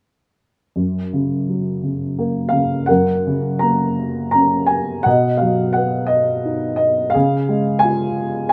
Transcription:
0.76 F#2
1.13 C#3
1.49 F#3
1.83 C#3
2.19 A#3
2.49 C#3 F5
2.86 F#2 A#4 F#5
3.27 C#3
3.59 A#3 A#5
4.31 C#4 A#5
4.67 G#5
5.03 B2 D#5 F#5
5.37 F5
5.42 F#3
5.73 B3 F#5
6.07 D#5
6.45 D#4
6.76 D#5
7.10 F5
7.14 C#3 G#4
7.49 G#3
7.79 G#5
7.84 F4
8.49 G#5

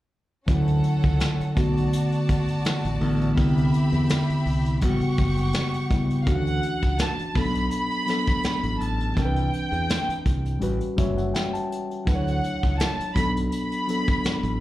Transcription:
0.47 D2 D3 F#3 C#4 E4 A4 F#5, kick, closed hi-hat
0.68 closed hi-hat
0.84 closed hi-hat
1.03 C#2, kick, closed hi-hat
1.20 snare, closed hi-hat
1.40 muted fingered electric bass stroke, closed hi-hat
1.55 B1 D3 A3 B3 F#4 D5 A5, kick, closed hi-hat
1.77 closed hi-hat
1.93 closed hi-hat
2.12 closed hi-hat
2.29 kick, closed hi-hat
2.48 closed hi-hat
2.65 snare, closed hi-hat
2.85 A1, closed hi-hat
3.00 A1 D3 A3 B3 E4, open hi-hat
3.21 closed hi-hat
3.35 C2 D3 B3 C4 G4 E5 B5, kick, closed hi-hat
3.39 E4
3.58 closed hi-hat
3.74 closed hi-hat
3.92 E2, closed hi-hat
4.09 snare, closed hi-hat
4.29 muted fingered electric bass stroke, closed hi-hat
4.46 C2, open hi-hat
4.66 closed hi-hat
4.81 A1 C#3 G3 B3 F#4 G4 F#5 C#6, kick, closed hi-hat
5.01 muted fingered electric bass stroke, closed hi-hat
5.18 F#1, kick, closed hi-hat
5.37 closed hi-hat
5.53 snare, closed hi-hat
5.74 closed hi-hat
5.90 C#3 G3 B3 E4, kick, closed hi-hat
6.10 closed hi-hat
6.22 E3 F5
6.26 D2 C#4 D4 F#4 F#5, kick, closed hi-hat
6.47 closed hi-hat
6.63 closed hi-hat
6.83 C#2, kick, closed hi-hat
6.99 A5, snare, closed hi-hat
7.19 muted fingered electric bass stroke, closed hi-hat
7.34 B1 F#3 B3 D4 A4, kick, open hi-hat
7.38 B5
7.55 closed hi-hat
7.71 B5, closed hi-hat
7.91 closed hi-hat
8.06 F#3 B3 D4 A4, snare, closed hi-hat
8.27 kick, closed hi-hat
8.43 snare, closed hi-hat
8.63 A1, closed hi-hat
8.80 A1 A5, closed hi-hat
9.00 closed hi-hat
9.15 C2 E3 C4 D4 A#4, kick, closed hi-hat
9.19 G5
9.25 B4
9.36 closed hi-hat
9.53 closed hi-hat
9.72 E2, closed hi-hat
9.89 snare, closed hi-hat
10.08 muted fingered electric bass stroke, closed hi-hat
10.26 C2, kick, closed hi-hat
10.45 closed hi-hat
10.59 A1 G3 C#4 F#4 B4, closed hi-hat
10.81 muted fingered electric bass stroke, closed hi-hat
10.96 F#1 G3 C#4 F#4 C#5 E5, kick, closed hi-hat
11.17 F#5, closed hi-hat
11.34 G5, snare, closed hi-hat
11.53 A5, closed hi-hat
11.72 closed hi-hat
11.91 closed hi-hat
12.05 D2 F#3 D4 E4 B4 F#5, kick, closed hi-hat
12.15 C#5
12.28 closed hi-hat
12.44 closed hi-hat
12.63 C#2, kick, closed hi-hat
12.79 A5, snare, closed hi-hat
12.99 muted fingered electric bass stroke, closed hi-hat
13.14 B1 F#3 B3 D4 A4 B5, kick, closed hi-hat
13.37 closed hi-hat
13.51 B5, closed hi-hat
13.72 closed hi-hat
13.87 F#3 B3 D4 A4, closed hi-hat
14.08 kick, closed hi-hat
14.24 snare, closed hi-hat
14.43 A1, closed hi-hat

